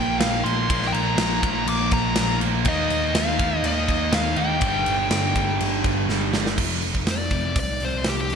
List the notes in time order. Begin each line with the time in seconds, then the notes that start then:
Already playing: A#1 A#2 F3 A#3 G5
0.19 A#1 A#2 F3 A#3 F5, snare, crash
0.44 A#1 A#2 F3 A#3 C6, crash
0.68 A#1 A#2 F3 A#3, kick, crash
0.82 snare
0.87 G5
0.93 A#1 A#5, crash
1.18 A#1, snare, crash
1.42 A#1 A#2 F3 A#3 A#5, kick, crash
1.67 A#1 D6, crash
1.91 A#1 A#5, kick, crash
2.16 A#1 A#2 F3 A#3, snare, crash
2.40 A#1 A#2 F3 A#3, crash
2.65 D#2 D#3 A#3 D#4 D#5, kick, crash
2.90 D#2, crash
3.14 D#2 F5, snare, crash
3.39 D#2 D#3 A#3 D#4, kick, crash
3.63 D#2 D#5, crash
3.88 D#2, kick, crash
4.13 D#2 D#3 A#3 D#4 F5, snare, crash
4.36 D#2 D#3 A#3 D#4 G5, crash
4.60 G1 G2 D3 G3, kick, crash
4.86 G1, crash
5.11 G1, snare, crash
5.34 G1 G2 D3 G3, kick, crash
5.61 G1, crash
5.84 G1, kick, crash
6.08 G1 G2 D3 G3, snare
6.32 G1 G2 D3 G3, snare
6.46 snare
6.57 F1 F2 C3 F3, kick, crash
6.82 F1 F2 C3, open hi-hat
6.95 kick
7.07 F1 F2 C3, snare, open hi-hat
7.11 D5
7.31 F1 F2 C3 F3, kick, open hi-hat
7.56 C2 F2 C3, kick, open hi-hat
7.60 D5
7.80 F2 C3 F3, open hi-hat
7.85 C5
8.04 C2 F2 C3, snare, open hi-hat
8.09 G4
8.21 G4
8.30 D#2 F2 C3, open hi-hat